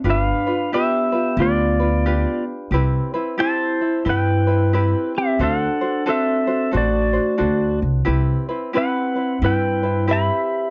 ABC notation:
X:1
M:4/4
L:1/8
Q:"Swing" 1/4=90
K:Clyd
V:1 name="Pedal steel guitar"
[B=f]2 [Ge]2 [=Fd]3 z | z2 [ca]2 [Bg]3 [Ge] | [Af]2 [Ae]2 [Fd]3 z | z2 [Bf]2 [Bg]2 [eb]2 |]
V:2 name="Ukulele"
[D=FGB] [DFB] [DFGB] [DFB] [DFGB] [DFB] [DFGB]2 | [CEGB] [CEB] [CEG] [CE] [CEGB] [CEB] [CEGB]2 | [DFAc] [DFc] [DFAc] [DFc] [DFAc] [DFc] [DFAc]2 | [CEGB] [CEB] [CEGB] [CEB] [CEGB] [CEB] [CEGB]2 |]
V:3 name="Vibraphone"
D2 B,2 B,3 z | z2 E2 E3 C | D2 C2 A,3 z | z2 C2 E2 G2 |]
V:4 name="Upright bass" clef=bass
G,,, z3 D,,4 | C,, z3 G,,4 | D,, z3 A,,,2 D,, C,, | C,, z3 G,,4 |]